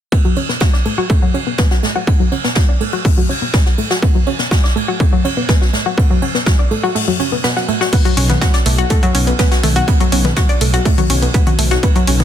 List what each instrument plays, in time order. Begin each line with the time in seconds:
0.12 synth arpeggio sound B3, kick, ride
0.25 synth arpeggio sound F#3, ride
0.36 synth arpeggio sound C#4, ride
0.49 synth arpeggio sound B3, snare
0.60 synth arpeggio sound F#4, kick, snare, ride
0.73 synth arpeggio sound D5, snare
0.85 synth arpeggio sound A3, ride
0.98 synth arpeggio sound F#4
1.10 synth arpeggio sound A3, kick, ride
1.22 synth arpeggio sound F#3
1.34 synth arpeggio sound C#4, ride
1.47 synth arpeggio sound B3
1.58 synth arpeggio sound B3, kick, snare, ride
1.71 synth arpeggio sound F#4, snare
1.83 synth arpeggio sound A3, snare, ride
1.96 synth arpeggio sound F#4
2.07 synth arpeggio sound B3, kick, ride
2.20 synth arpeggio sound F#3, ride
2.32 synth arpeggio sound C#4, ride
2.44 synth arpeggio sound B3, snare
2.55 synth arpeggio sound F#4, kick, snare, ride
2.69 synth arpeggio sound D5
2.81 synth arpeggio sound A3, ride
2.92 synth arpeggio sound F#4, ride
3.05 synth arpeggio sound A3, kick, open hi-hat
3.18 synth arpeggio sound F#3
3.29 synth arpeggio sound C#4, ride
3.42 synth arpeggio sound B3
3.54 synth arpeggio sound B3, kick, snare, ride
3.66 synth arpeggio sound F#4, snare
3.78 synth arpeggio sound A3, ride
3.90 synth arpeggio sound F#4, snare
4.02 synth arpeggio sound B3, kick, ride
4.15 synth arpeggio sound F#3, ride
4.26 synth arpeggio sound C#4, ride
4.39 synth arpeggio sound B3, snare
4.51 synth arpeggio sound F#4, kick, snare, ride
4.64 synth arpeggio sound D5, snare
4.76 synth arpeggio sound A3, ride
4.88 synth arpeggio sound F#4
5.00 synth arpeggio sound A3, kick, ride
5.13 synth arpeggio sound F#3
5.25 synth arpeggio sound C#4, ride
5.37 synth arpeggio sound B3
5.48 synth arpeggio sound B3, kick, snare, ride
5.61 synth arpeggio sound F#4, snare
5.73 synth arpeggio sound A3, snare, ride
5.86 synth arpeggio sound F#4
5.98 synth arpeggio sound B3, kick, ride
6.10 synth arpeggio sound F#3, ride
6.22 synth arpeggio sound C#4, ride
6.35 synth arpeggio sound B3, snare
6.46 synth arpeggio sound F#4, kick, snare, ride
6.59 synth arpeggio sound D5
6.71 synth arpeggio sound A3, ride
6.83 synth arpeggio sound F#4, ride
6.95 synth arpeggio sound A3, open hi-hat
7.08 synth arpeggio sound F#3
7.20 synth arpeggio sound C#4, ride
7.32 synth arpeggio sound B3
7.44 synth arpeggio sound B3, snare, ride
7.57 synth arpeggio sound F#4, snare
7.68 synth arpeggio sound A3, ride
7.81 synth arpeggio sound F#4, snare
7.93 synth arpeggio sound B3, kick, closed hi-hat, crash, ride
8.05 synth arpeggio sound F#3, closed hi-hat, ride
8.17 detuned saw bass B1, synth arpeggio sound C#4, open hi-hat, ride
8.29 synth arpeggio sound B3, snare, closed hi-hat, low conga
8.41 synth arpeggio sound F#4, kick, snare, closed hi-hat, ride
8.53 synth arpeggio sound D5, snare, closed hi-hat
8.66 detuned saw bass B1, synth arpeggio sound A3, open hi-hat, ride
8.78 synth arpeggio sound F#4, closed hi-hat
8.90 synth arpeggio sound A3, kick, closed hi-hat, ride
9.03 synth arpeggio sound F#3, closed hi-hat
9.15 detuned saw bass B1, synth arpeggio sound C#4, open hi-hat, ride
9.27 synth arpeggio sound B3, closed hi-hat
9.39 synth arpeggio sound B3, kick, snare, closed hi-hat, ride
9.52 synth arpeggio sound F#4, snare, closed hi-hat
9.63 detuned saw bass B1, synth arpeggio sound A3, snare, open hi-hat, ride, low conga
9.76 synth arpeggio sound F#4, closed hi-hat
9.88 synth arpeggio sound B3, kick, closed hi-hat, ride
10.00 synth arpeggio sound F#3, closed hi-hat, ride
10.12 detuned saw bass B1, synth arpeggio sound C#4, open hi-hat, ride
10.25 synth arpeggio sound B3, snare, closed hi-hat, low conga
10.36 synth arpeggio sound F#4, kick, snare, closed hi-hat, ride
10.49 synth arpeggio sound D5, closed hi-hat
10.61 detuned saw bass B1, synth arpeggio sound A3, open hi-hat, ride
10.73 synth arpeggio sound F#4, closed hi-hat, ride
10.85 synth arpeggio sound A3, kick, closed hi-hat, open hi-hat
10.98 synth arpeggio sound F#3, closed hi-hat, low conga
11.10 detuned saw bass B1, synth arpeggio sound C#4, open hi-hat, ride
11.22 synth arpeggio sound B3, closed hi-hat
11.34 synth arpeggio sound B3, kick, closed hi-hat, ride
11.47 synth arpeggio sound F#4, closed hi-hat, ride, low conga
11.59 detuned saw bass B1, synth arpeggio sound A3, open hi-hat, ride
11.71 synth arpeggio sound F#4, snare, closed hi-hat
11.83 synth arpeggio sound B3, kick, closed hi-hat, ride
11.96 synth arpeggio sound F#3, closed hi-hat, ride
12.07 detuned saw bass B1, synth arpeggio sound C#4, open hi-hat, ride
12.20 synth arpeggio sound B3, snare, closed hi-hat, low conga